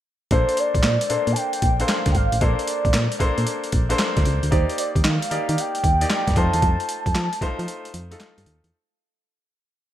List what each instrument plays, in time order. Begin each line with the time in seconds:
0.31 fm bass A#1, grand piano A#3 D4 A4 C5, soft synth lead C5, kick, closed hi-hat
0.49 closed hi-hat
0.57 soft synth lead D5, closed hi-hat
0.75 fm bass A#1, kick, closed hi-hat
0.83 fm bass A#2, snare, clap, closed hi-hat
1.01 closed hi-hat
1.09 fm bass A#2, grand piano A#3 D4 A4 C5, closed hi-hat
1.27 fm bass A#2, closed hi-hat
1.32 soft synth lead A5, closed hi-hat
1.37 soft synth lead G5
1.53 closed hi-hat
1.62 fm bass A#1, kick, closed hi-hat
1.80 grand piano A#3 D4 A4 C5, soft synth lead F5, closed hi-hat
1.89 snare, clap, closed hi-hat
2.06 fm bass D2, kick, snare, closed hi-hat
2.12 fm bass G#1, soft synth lead F5 G5, kick, closed hi-hat
2.32 fm bass A1, closed hi-hat
2.41 fm bass A#1, grand piano A#3 D4 A4 C5, soft synth lead D5, kick, closed hi-hat
2.59 closed hi-hat
2.67 closed hi-hat
2.85 fm bass A#1, kick, closed hi-hat
2.94 fm bass A#2, snare, clap, closed hi-hat
3.12 closed hi-hat
3.19 fm bass A#2, grand piano A#3 D4 A4 C5, kick, closed hi-hat
3.38 fm bass A#2, closed hi-hat
3.47 closed hi-hat
3.64 closed hi-hat
3.72 fm bass A#1, kick, closed hi-hat
3.89 grand piano A#3 D4 A4 C5, closed hi-hat
3.99 snare, clap, closed hi-hat
4.17 fm bass D2, kick, snare, closed hi-hat
4.25 fm bass C#2, closed hi-hat
4.43 fm bass D2, closed hi-hat
4.51 fm bass D#2, grand piano A#3 D#4 G4 D5, soft synth lead C5, kick, closed hi-hat
4.70 closed hi-hat
4.78 soft synth lead D5, closed hi-hat
4.96 fm bass D#2, kick, closed hi-hat
5.04 fm bass D#3, soft synth lead F5, snare, clap, closed hi-hat
5.22 closed hi-hat
5.30 fm bass D#3, grand piano A#3 D#4 G4 D5, closed hi-hat
5.49 fm bass D#3, closed hi-hat
5.58 soft synth lead G5, closed hi-hat
5.75 closed hi-hat
5.84 fm bass D#2, kick, closed hi-hat
6.01 grand piano A#3 D#4 G4 D5, closed hi-hat
6.10 snare, clap, closed hi-hat
6.28 fm bass G2, kick, snare, closed hi-hat
6.36 fm bass F2, grand piano A3 D#4 F4 C5, soft synth lead A5, kick, closed hi-hat
6.53 fm bass E2, closed hi-hat
6.62 fm bass F2, kick, closed hi-hat
6.80 closed hi-hat
6.89 closed hi-hat
7.06 fm bass F2, kick, closed hi-hat
7.15 fm bass F3, snare, clap, closed hi-hat
7.33 closed hi-hat
7.41 fm bass F3, grand piano A3 D#4 F4 C5, kick, closed hi-hat
7.59 fm bass F3, closed hi-hat
7.68 closed hi-hat
7.85 closed hi-hat
7.94 fm bass F2, closed hi-hat
8.11 grand piano A3 D#4 F4 A4, closed hi-hat
8.20 snare, clap, closed hi-hat
8.38 fm bass G2, closed hi-hat
8.46 fm bass D#2, closed hi-hat
8.64 fm bass E2, closed hi-hat